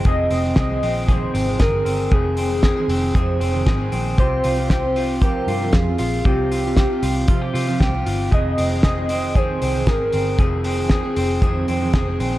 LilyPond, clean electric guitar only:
\new Staff \with { instrumentName = "Clean electric guitar" } { \time 4/4 \key f \minor \tempo 4 = 116 <f, aes'>8 c'8 aes'8 c'8 aes'8 c'8 aes'8 c'8 | <f, aes'>8 c'8 aes'8 c'8 aes'8 c'8 aes'8 c'8 | <c g'>8 f'8 g'8 f'8 g'8 f'4 f'8 | <c g'>8 f'8 g'8 f'8 f'16 g'16 f'8 g'8 f'8 |
<f, aes'>8 c'8 aes'8 c'8 aes'8 c'8 aes'8 c'8 | <f, aes'>8 c'8 aes'8 c'8 aes'8 c'8 aes'8 c'8 | }